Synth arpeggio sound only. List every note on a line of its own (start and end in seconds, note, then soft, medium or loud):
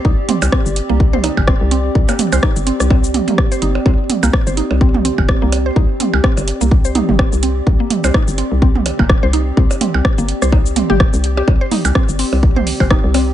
0.05 0.09 D#4 medium
0.29 0.35 C4 medium
0.52 0.59 C4 medium
0.90 0.94 A#3 medium
1.13 1.16 C5 medium
1.24 1.28 D#4 medium
1.48 1.54 C4 medium
1.71 1.78 C4 medium
2.09 2.14 A#3 medium
2.32 2.35 C5 medium
2.43 2.47 D#4 medium
2.67 2.73 C4 medium
2.90 2.97 C4 medium
3.28 3.33 A#3 medium
3.52 3.55 C5 medium
3.62 3.66 D#4 medium
3.86 3.92 C4 medium
4.23 4.28 A#3 medium
4.47 4.50 C5 medium
4.57 4.61 D#4 medium
4.81 4.87 C4 medium
5.05 5.11 C4 medium
5.42 5.47 A#3 medium
5.66 5.69 C5 medium
5.76 5.80 D#4 medium
6.00 6.06 C4 medium
6.24 6.30 C4 medium
6.61 6.66 A#3 medium
6.85 6.88 C5 medium
6.95 6.99 D#4 medium
7.19 7.25 C4 medium
7.43 7.49 C4 medium
7.80 7.85 A#3 medium
8.04 8.07 C5 medium
8.14 8.18 D#4 medium
8.38 8.44 C4 medium
8.62 8.68 C4 medium
8.99 9.04 A#3 medium
9.23 9.26 C5 medium
9.33 9.37 D#4 medium
9.57 9.64 C4 medium
9.81 9.87 C4 medium
10.18 10.23 A#3 medium
10.42 10.45 C5 medium
10.52 10.56 D#4 medium
10.76 10.86 C4 medium
10.90 10.95 G4 loud
11.00 11.06 G4 medium
11.37 11.45 G4 loud
11.61 11.64 C5 medium
11.71 11.75 D#4 medium
11.95 12.02 C4 medium
12.19 12.25 C4 medium
12.56 12.64 C5 medium
12.80 12.83 C5 medium
12.90 12.94 D#4 medium
13.14 13.21 C4 medium